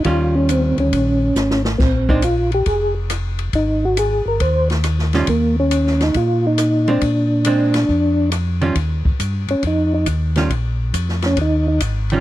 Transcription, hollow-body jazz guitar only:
X:1
M:4/4
L:1/8
Q:"Swing" 1/4=138
K:Ebmix
V:1 name="Hollow-body jazz guitar"
[E,G,DF]4- [E,G,DF] z3 | z [A,C=D] z6 | z6 z [E,G,DF] | z6 z [A,C=D] |
z2 [A,C=D] z4 [E,G,_DF] | z6 z [E,G,DF] | z6 z [E,G,DF] |]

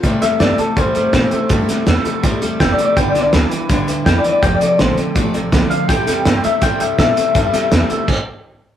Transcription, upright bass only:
X:1
M:4/4
L:1/8
Q:1/4=164
K:C
V:1 name="Upright bass" clef=bass
C,, E,, G,, z E,, G,, _B,, z | G,, z E,, z C,, E,, F,,, z | G,,, B,,, D,, z B,,, D,, F,, z | F,,, z A,,, z F,,, A,,, C,, z |
z E,, G,, z E,, G,, _B,, z | G,, z E,, z4 z |]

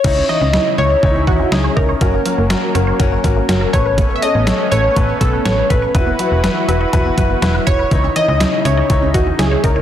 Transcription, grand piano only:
X:1
M:4/4
L:1/8
Q:1/4=122
K:C#m
V:1 name="Grand piano"
[DEc] [DEc] [DEc] [DEc] [DEc] [DEc] [DEc] [DEc] | [CF^A] [CFA] [CFA] [CFA] [CFA] [CFA] [CFA] [C=AB]- | [CAB] [CAc] [CAc] [CAB] [CAB] [CAB] [CAB] [CAB] | [EFB] [EFB] [EFB] [EFB] [EFB] [EFB] [EFB] [EFB] |
[DEc] [DEc] [DEc] [DEc] [DEc] [DEd] [DEc] [DEc] |]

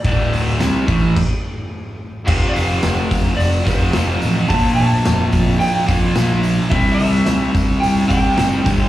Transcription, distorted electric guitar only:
X:1
M:4/4
L:1/8
Q:1/4=108
K:F
V:1 name="Distorted electric guitar" clef=bass
[D,,A,,D,]2 [C,G,C] [A,,E,A,] z4 | [F,,C,F,]4- [F,,C,F,] [F,,C,F,] [F,,C,F,]2 | [B,,F,B,]4- [B,,F,B,] [B,,F,B,] [B,,F,B,]2 | [C,G,C]4- [C,G,C] [C,G,C] [C,G,C] [G,,D,G,] |]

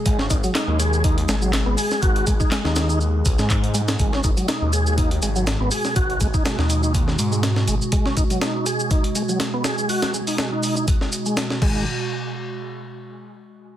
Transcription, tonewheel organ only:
X:1
M:4/4
L:1/16
Q:"Swing 16ths" 1/4=122
K:G#m
V:1 name="Tonewheel organ"
G, C D F, D2 G2 D z G, F, z B, G2 | F2 G, D G, D2 D z3 G, z2 G, z | G, C D F, D2 G2 D z G, F, z B, G2 | F2 G, D G, D2 D z3 G, z2 G, z |
G, C D F, D2 G2 D z G, F, z B, G2 | F2 G, D G, D2 D z3 G, z2 G,2 | z16 |]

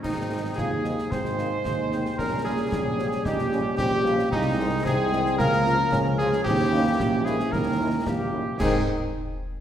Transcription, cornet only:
X:1
M:2/4
L:1/8
Q:1/4=112
K:Ab
V:1 name="Cornet"
E2 A2 | c4 | B A3 | G2 G2 |
E2 A2 | B3 A | G3 A | B z G2 |
A z3 |]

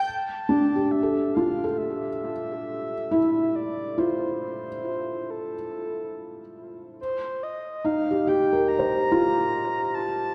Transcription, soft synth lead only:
X:1
M:4/4
L:1/8
Q:1/4=70
K:Dm
V:1 name="Soft synth lead"
a2 e f e4 | d c c2 A3 z | c _e f g b3 a |]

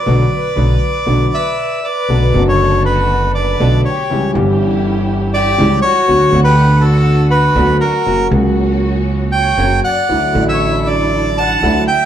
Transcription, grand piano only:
X:1
M:4/4
L:1/8
Q:1/4=120
K:Bm
V:1 name="Grand piano" clef=bass
[B,,D,F,] z [B,,D,F,] z [B,,D,F,] z3 | [B,,,B,,D,A,B,F] [F,,,F,,D,A,B,F]4- [F,,,F,,D,A,B,F] [B,,,B,,D,A,B,F] z | [C,,C,E,G,CG] [G,,,G,,E,G,CG]4- [G,,,G,,E,G,CG] [C,,C,E,G,CG] z | [D,,D,F,B,F] [D,,D,B,f]4- [D,,D,B,f] [D,,D,F,B,F] z |
[F,,C,F,^A,F] [C,,C,F,A,F]4- [C,,C,F,A,F] [F,,C,F,A,F] z | [D,,D,F,A,E] [A,,,A,,D,F,A,E]4- [A,,,A,,D,F,A,E] [D,,D,F,A,E] z |]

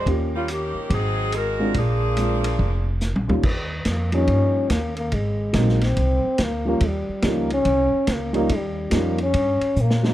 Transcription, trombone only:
X:1
M:4/4
L:1/8
Q:"Swing" 1/4=142
K:Eb
V:1 name="Trombone"
z8 | z8 | z2 B, _D3 B, B, | A,2 B, C3 B, B, |
G,2 B, _D3 B, B, | G,2 B, _D3 B, B, |]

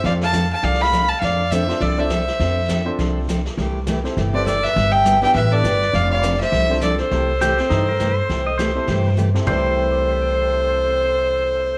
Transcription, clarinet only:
X:1
M:4/4
L:1/8
Q:"Swing" 1/4=204
K:C
V:1 name="Clarinet"
d f2 f d f2 f | d2 c2 A c3- | c3 z4 z | z4 z B A B- |
B e2 e B B3 | d d2 c3 A A- | A8- | A6 z2 |
A8- | A8 |]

